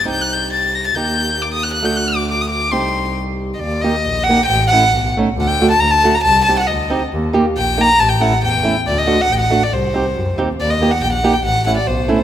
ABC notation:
X:1
M:2/4
L:1/16
Q:1/4=137
K:none
V:1 name="Violin"
g' ^f' g'2 a'2 _b' a' | g'4 d' _e' ^f' f' | g' ^f' d'2 d' _e' d'2 | c'4 z3 z/2 _e/2 |
d2 _e4 ^f2 | g2 ^f4 z2 | ^f g2 a _b a2 b | a2 a ^f _e3 z |
z4 g2 _b2 | a g ^f2 g3 z | d _e2 ^f g f2 d | c6 z2 |
d _e2 ^f g f2 g | ^f2 f d c3 z |]
V:2 name="Nylon-string guitar"
[C_EG]8 | [_B,_EG]8 | [A,D^F]8 | [C_EG]8 |
z2 [_B,_EG] z3 [B,EG] z | z2 [A,^CE] z3 [A,C_E] z | z2 [A,D^F] z3 [A,DF] z | z2 [C_EG] z3 [CEG] z |
z2 [_B,_EG] z3 [B,EG] z | z2 [A,^CE] z3 [A,CE] z | z2 [A,D^F] z3 [A,DF] z | z2 [C_EG] z3 [CEG] z |
z2 [_B,_EG] z3 [B,EG] z | z2 [A,^CE] z3 [A,CE] z |]
V:3 name="Double bass" clef=bass
C,,8 | _E,,8 | D,,8 | C,,8 |
_E,,4 _B,,,2 z2 | A,,,4 B,,,2 z2 | D,,4 D,,2 z2 | C,,4 D,,2 z2 |
_E,,4 _B,,,2 z2 | A,,,4 E,,2 z2 | D,,4 A,,,2 z2 | C,,4 ^F,,2 _E,,2 |
_E,,4 _B,,,2 z2 | A,,,4 B,,,2 z2 |]